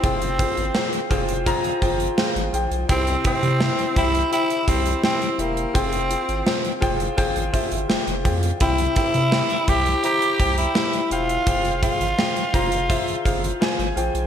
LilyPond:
<<
  \new Staff \with { instrumentName = "Grand piano" } { \time 4/4 \key f \minor \tempo 4 = 84 <f' aes' c'' g''>8 <f' aes' c'' g''>8 <f' aes' c'' g''>8 <f' aes' c'' g''>8 <f' aes' c'' bes''>8 <f' aes' c'' g''>8 <f' aes' c'' g''>8 <f' aes' c'' g''>8 | <e' g' c'' g''>8 <e' g' c'' g''>8 <e' g' c'' e''>8 <e' g' c'' g''>8 <e' g' c'' g''>8 <e' g' c'' g''>8 <e' g' c'' g''>8 <e' g' c'' e''>8 | <f' aes' c'' g''>8 <f' aes' c'' g''>8 <f' aes' c'' g''>8 <f' aes' c'' g''>8 <f' aes' c'' g''>8 <f' aes' c'' e''>8 <f' aes' c'' g''>8 <f' aes' c'' g''>8 | <e' g' c'' g''>8 <e' g' c'' g''>8 <e' g' c'' g''>8 <e' g' c'' g''>8 <e' g' c'' bes''>8 <e' g' c'' g''>8 <e' g' c'' g''>8 <g' c'' e'' g''>8 |
<f' aes' c'' g''>8 <f' aes' c'' g''>8 <f' aes' c'' g''>8 <f' aes' c'' bes''>8 <f' aes' c'' e''>8 <f' aes' c'' f''>8 <f' aes' c'' aes''>8 <f' aes' c'' g''>8 | }
  \new Staff \with { instrumentName = "Grand piano" } { \clef bass \time 4/4 \key f \minor r1 | c4. r2 r8 | r1 | c4. r2 r8 |
r1 | }
  \new Staff \with { instrumentName = "Tenor saxophone" } { \time 4/4 \key f \minor c'4. r2 r8 | c'8 c'4 e'8 e'8 c'8 c'8 bes8 | c'4. r2 r8 | e'8 e'4 g'8 g'8. e'8. f'8~ |
f'8 f'4 f'4 r4. | }
  \new Staff \with { instrumentName = "Analog synth bass" } { \clef bass \time 4/4 \key f \minor f,,8. aes,,16 r8 f,,8. r16 g,,8 r16 aes,,16 bes,,16 b,,16 | c,8 r16 c8 r16 c,8 r8 c,8 r8 e,,8 | f,,8. aes,,16 r8 f,,8 g,,16 aes,,16 r16 g,,16 f,,16 f,,16 f,8 | c,8 r16 c8 r16 c,8 r8 c,8 r8 e,,8 |
f,,8. aes,,16 r8 f,,8. r16 g,,8 r16 aes,,16 bes,,16 b,,16 | }
  \new DrumStaff \with { instrumentName = "Drums" } \drummode { \time 4/4 <hh bd>16 hh16 <hh bd>16 hh16 sn16 hh16 <hh bd>16 hh16 <hh bd>16 hh16 <hh bd>16 hh16 sn16 hh16 hh16 hh16 | <hh bd>16 hh16 <hh bd>16 hh16 sn16 hh16 <hh bd>16 hh16 hh16 hh16 <hh bd>16 hh16 sn16 hh16 hh16 hh16 | <hh bd>16 hh16 hh16 hh16 sn16 hh16 <hh bd>16 hh16 <hh bd>16 hh16 <hh bd>16 hh16 sn16 hh16 <hh bd>16 hh16 | <hh bd>16 hh16 <hh bd>16 hh16 sn16 hh16 <hh bd>16 hh16 hh16 hh16 <hh bd>16 hh16 sn16 hh16 hh16 hh16 |
<hh bd>16 hh16 <hh bd>16 hh16 sn16 hh16 <hh bd>16 hh16 <hh bd>16 hh16 <hh bd>16 hh16 sn16 hh16 hh16 hh16 | }
>>